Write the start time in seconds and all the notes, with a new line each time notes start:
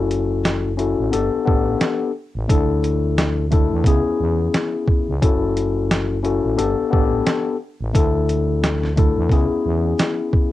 Already playing: F#1 C#4 E4 F#4 A4
0.11 closed hi-hat
0.45 snare, closed hi-hat
0.78 C#4 E4 F#4 A4, closed hi-hat
0.99 A1
1.11 G1 B3 D4 G4 A4, closed hi-hat
1.33 A1
1.46 A1 B3 D4 G4 A4, kick
1.81 snare, closed hi-hat
2.35 A1
2.48 D2 A3 D4 E4 A4, kick, closed hi-hat
2.84 closed hi-hat
3.18 snare, closed hi-hat
3.51 A3 D4 E4 A4, kick, closed hi-hat
3.72 E2
3.84 C#2 B3 C#4 E4 G#4, kick, closed hi-hat
4.06 E2
4.20 E2
4.54 snare, closed hi-hat
4.87 kick
5.08 C#2
5.21 F#1 C#4 E4 F#4 A4, kick, closed hi-hat
5.57 closed hi-hat
5.91 snare, closed hi-hat
6.23 C#4 E4 F#4 A4, closed hi-hat
6.44 A1
6.56 G1 B3 D4 G4 A4, closed hi-hat
6.78 A1
6.91 A1 B3 D4 G4 A4, kick
7.27 snare, closed hi-hat
7.81 A1
7.93 D2 A3 D4 E4 A4, kick, closed hi-hat
8.29 closed hi-hat
8.64 snare, closed hi-hat
8.83 snare
8.96 A3 D4 E4 A4, kick, closed hi-hat
9.17 E2
9.29 C#2 B3 C#4 E4 G#4, kick, closed hi-hat
9.51 E2
9.66 E2
9.99 snare, closed hi-hat
10.33 kick